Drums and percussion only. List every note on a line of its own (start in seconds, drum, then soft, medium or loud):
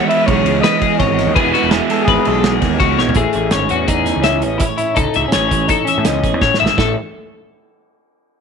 0.10 ride medium
0.28 kick loud
0.28 ride loud
0.46 ride medium
0.64 snare loud
0.64 ride loud
0.82 kick medium
0.82 ride medium
1.00 kick loud
1.00 snare soft
1.00 ride loud
1.19 snare soft
1.19 ride medium
1.36 kick loud
1.36 ride loud
1.55 snare soft
1.55 ride medium
1.71 snare loud
1.71 ride loud
1.90 snare soft
1.90 ride medium
2.08 kick loud
2.08 snare soft
2.08 ride loud
2.25 ride medium
2.44 snare loud
2.44 ride loud
2.62 kick medium
2.62 snare soft
2.62 ride medium
2.80 kick loud
2.80 snare soft
2.80 ride loud
2.99 snare medium
3.09 floor tom medium
3.15 kick loud
3.15 closed hi-hat medium
3.33 closed hi-hat medium
3.51 snare loud
3.51 closed hi-hat medium
3.69 closed hi-hat medium
3.88 kick loud
3.88 closed hi-hat medium
4.06 snare soft
4.06 closed hi-hat medium
4.23 snare loud
4.23 closed hi-hat loud
4.42 closed hi-hat medium
4.60 kick loud
4.60 snare soft
4.60 closed hi-hat loud
4.78 closed hi-hat medium
4.96 kick loud
4.96 closed hi-hat medium
5.14 closed hi-hat medium
5.32 snare loud
5.32 closed hi-hat medium
5.51 kick medium
5.51 closed hi-hat medium
5.69 kick loud
5.69 closed hi-hat loud
5.87 closed hi-hat medium
6.05 snare loud
6.05 closed hi-hat loud
6.24 kick medium
6.24 snare soft
6.24 closed hi-hat medium
6.41 kick loud
6.41 snare medium
6.54 snare medium
6.66 snare medium
6.78 kick loud
6.78 snare loud